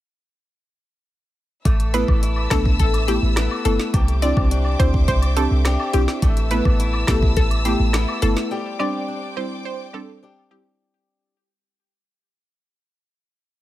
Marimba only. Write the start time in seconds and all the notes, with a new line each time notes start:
1.94 A3 B3 E4
2.51 A3 B3 D4
3.08 A3 B3 E4
3.65 A3 B3 E4
4.22 C4 D4 E4
4.79 C4 D4 E4
5.37 C4 D4 G4
5.94 C4 D4 E4
6.51 A3 B3 E4
7.08 A3 B3 G4
7.65 A3 B3 E4
8.22 A3 B3 E4
8.79 G3 C4 D4
9.36 G3 C4 E4
9.94 G3 C4 D4
10.51 G3 C4 E4